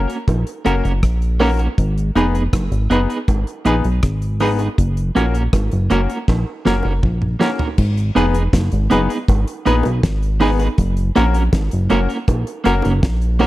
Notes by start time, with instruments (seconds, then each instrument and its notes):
0.08 clean electric guitar A#3 C#4 F#4 A#4, closed hi-hat
0.28 analog synth bass A#1, kick, closed hi-hat, high bongo
0.47 closed hi-hat
0.65 analog synth bass F#1, upright piano A#3 C#4 F#4 A#4, clean electric guitar A#3 C#4 F#4 A#4, closed hi-hat
0.84 analog synth bass F#1, clean electric guitar A#3 C#4 F#4 A#4, closed hi-hat
1.03 analog synth bass A#1, kick, cross-stick, closed hi-hat
1.22 closed hi-hat
1.40 upright piano A#3 C#4 F#4 A#4, clean electric guitar A#3 C#4 F#4 A#4, open hi-hat, high bongo, low bongo
1.59 clean electric guitar A#3 C#4 F#4 A#4, closed hi-hat, high bongo
1.78 analog synth bass G#1, kick, closed hi-hat
1.98 closed hi-hat
2.15 analog synth bass F1, upright piano B3 D#4 G#4 B4, clean electric guitar B3 D#4 G#4 B4, closed hi-hat, high bongo
2.35 clean electric guitar B3 D#4 G#4 B4, closed hi-hat
2.53 analog synth bass F#1, kick, cross-stick, closed hi-hat, high bongo
2.72 analog synth bass G#1, closed hi-hat
2.90 analog synth bass F#1, upright piano B3 D#4 G#4 B4, clean electric guitar B3 D#4 G#4 B4, closed hi-hat
3.09 clean electric guitar B3 D#4 G#4 B4, closed hi-hat
3.28 analog synth bass G#1, kick, closed hi-hat, high bongo
3.47 closed hi-hat
3.65 analog synth bass A#1, clean electric guitar B3 D#4 G#4 B4, upright piano B3 D#4 G#4 B4, closed hi-hat
3.84 analog synth bass B1, closed hi-hat
4.03 analog synth bass G#1, kick, cross-stick, closed hi-hat
4.22 closed hi-hat
4.40 upright piano B3 D#4 G#4 B4, clean electric guitar B3 D#4 G#4 B4, open hi-hat, high bongo, low bongo
4.59 clean electric guitar B3 D#4 G#4 B4, closed hi-hat, high bongo
4.78 analog synth bass F#1, kick, closed hi-hat
4.97 closed hi-hat
5.15 analog synth bass A#1, clean electric guitar A#3 C#4 F#4 A#4, upright piano A#3 C#4 F#4 A#4, closed hi-hat, high bongo
5.34 clean electric guitar A#3 C#4 F#4 A#4, closed hi-hat
5.53 analog synth bass G#1, kick, cross-stick, closed hi-hat, high bongo
5.72 analog synth bass F#1, closed hi-hat
5.90 analog synth bass F#1, clean electric guitar A#3 C#4 F#4 A#4, upright piano A#3 C#4 F#4 A#4, closed hi-hat, low bongo
6.10 clean electric guitar A#3 C#4 F#4 A#4, closed hi-hat
6.28 analog synth bass A#1, kick, snare, high bongo
6.65 analog synth bass F#1, clean electric guitar A#3 C#4 F#4 A#4, upright piano A#3 C#4 F#4 A#4, snare
6.83 analog synth bass F#1, clean electric guitar A#3 C#4 F#4 A#4, high bongo
7.03 analog synth bass A#1, kick, mid tom
7.22 mid tom
7.40 clean electric guitar A#3 C#4 F#4 A#4, upright piano A#3 C#4 F#4 A#4, snare, high bongo, low bongo
7.59 clean electric guitar A#3 C#4 F#4 A#4, floor tom, high bongo
7.78 analog synth bass G#1, kick, crash
7.97 closed hi-hat
8.15 analog synth bass F1, clean electric guitar B3 D#4 G#4 B4, upright piano B3 D#4 G#4 B4, closed hi-hat, high bongo
8.34 clean electric guitar B3 D#4 G#4 B4, closed hi-hat
8.53 analog synth bass F#1, kick, snare, closed hi-hat, high bongo
8.72 analog synth bass G#1, closed hi-hat
8.90 analog synth bass F#1, clean electric guitar B3 D#4 G#4 B4, upright piano B3 D#4 G#4 B4, closed hi-hat, low bongo
9.09 clean electric guitar B3 D#4 G#4 B4, closed hi-hat
9.28 analog synth bass G#1, kick, closed hi-hat, high bongo
9.48 closed hi-hat
9.66 analog synth bass A#1, clean electric guitar B3 D#4 G#4 B4, upright piano B3 D#4 G#4 B4, closed hi-hat
9.83 analog synth bass B1, closed hi-hat, high bongo
10.03 analog synth bass G#1, kick, snare, closed hi-hat
10.23 closed hi-hat
10.40 clean electric guitar B3 D#4 G#4 B4, upright piano B3 D#4 G#4 B4, open hi-hat, high bongo, low bongo
10.59 clean electric guitar B3 D#4 G#4 B4, closed hi-hat, high bongo
10.78 analog synth bass F#1, kick, closed hi-hat
10.97 closed hi-hat
11.15 analog synth bass A#1, upright piano A#3 C#4 F#4 A#4, clean electric guitar A#3 C#4 F#4 A#4, closed hi-hat, high bongo
11.34 clean electric guitar A#3 C#4 F#4 A#4, closed hi-hat
11.53 analog synth bass G#1, kick, snare, closed hi-hat, high bongo
11.71 analog synth bass F#1, closed hi-hat
11.90 analog synth bass F#1, clean electric guitar A#3 C#4 F#4 A#4, upright piano A#3 C#4 F#4 A#4, closed hi-hat, low bongo
12.09 clean electric guitar A#3 C#4 F#4 A#4, closed hi-hat
12.28 analog synth bass A#1, kick, closed hi-hat, high bongo
12.47 closed hi-hat
12.64 analog synth bass F#1, clean electric guitar A#3 C#4 F#4 A#4, upright piano A#3 C#4 F#4 A#4, closed hi-hat
12.82 analog synth bass F#1, clean electric guitar A#3 C#4 F#4 A#4, closed hi-hat, high bongo
13.03 analog synth bass A#1, kick, snare, closed hi-hat
13.22 closed hi-hat
13.39 clean electric guitar A#3 C#4 F#4 A#4, upright piano A#3 C#4 F#4 A#4, open hi-hat, high bongo, low bongo